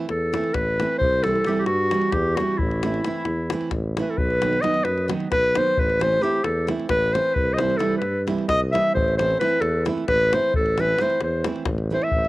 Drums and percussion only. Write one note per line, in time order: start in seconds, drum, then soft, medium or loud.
0.09 davul high medium
0.34 davul high medium
0.44 davul high soft
0.54 davul high medium
0.54 davul low medium
0.80 davul high medium
1.01 davul low medium
1.13 davul high soft
1.24 davul high medium
1.36 davul high soft
1.44 davul high medium
1.66 davul high medium
1.91 davul high medium
2.02 davul high soft
2.12 davul high medium
2.12 davul low medium
2.37 davul high medium
2.59 davul low medium
2.71 davul high soft
2.83 davul high medium
2.94 davul high soft
3.04 davul high medium
3.25 davul high medium
3.50 davul high medium
3.61 davul high soft
3.71 davul high medium
3.71 davul low medium
3.97 davul high medium
4.18 davul low medium
4.30 davul high soft
4.42 davul high medium
4.53 davul high soft
4.64 davul high medium
4.74 davul high soft
4.85 davul high medium
4.98 davul high soft
5.10 davul high medium
5.20 davul high soft
5.32 davul high medium
5.32 davul low medium
5.44 davul high soft
5.55 davul high medium
5.67 davul high soft
5.77 davul low medium
5.90 davul high soft
6.01 davul high medium
6.12 davul high soft
6.44 davul high medium
6.68 davul high medium
6.80 davul high soft
6.89 davul high medium
6.89 davul low medium
7.15 davul high medium
7.36 davul low medium
7.59 davul high medium
7.70 davul high soft
7.80 davul high medium
8.02 davul high soft
8.28 davul high medium
8.38 davul high soft
8.49 davul high medium
8.49 davul low medium
8.75 davul high medium
8.97 davul low medium
9.08 davul high soft
9.19 davul high medium
9.30 davul high soft
9.41 davul high medium
9.62 davul high medium
9.86 davul high medium
9.98 davul high soft
10.08 davul high medium
10.08 davul low medium
10.33 davul high medium
10.54 davul low loud
10.66 davul high soft
10.78 davul high medium
10.89 davul high soft
10.98 davul high medium
11.10 davul high soft
11.21 davul high medium
11.44 davul high medium
11.56 davul high soft
11.65 davul high medium
11.65 davul low medium
11.78 davul high soft
12.02 davul high soft
12.12 davul low medium
12.25 davul high soft